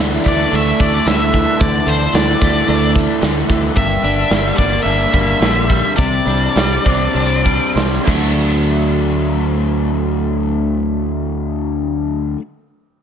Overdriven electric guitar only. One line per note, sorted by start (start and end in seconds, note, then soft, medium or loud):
0.00 0.79 D3 medium
0.00 1.32 E3 medium
0.00 0.51 D4 medium
0.24 0.78 A3 medium
0.51 1.86 D4 medium
0.80 2.14 A3 medium
1.06 1.58 D3 medium
1.33 2.12 E3 medium
1.60 2.95 D3 medium
1.86 2.69 D4 medium
2.13 3.49 E3 medium
2.41 2.95 A3 medium
2.69 4.04 D4 medium
2.96 3.77 A3 medium
3.23 3.76 D3 medium
3.50 3.77 E3 medium
3.77 5.13 G2 medium
4.04 4.85 D4 medium
4.31 5.69 G3 medium
4.58 5.12 A#3 medium
4.86 6.01 D4 medium
5.13 5.97 A#3 medium
5.41 5.97 D3 medium
5.70 5.98 G3 medium
5.98 7.44 C3 medium
6.27 7.15 D4 medium
6.56 8.07 G3 medium
6.86 7.45 C4 medium
7.16 8.07 D4 medium
7.46 8.07 C4 medium
7.77 8.05 C3 medium
8.06 12.37 D3 medium
8.06 12.39 F#3 medium
8.06 12.40 A3 medium
8.10 12.41 D4 medium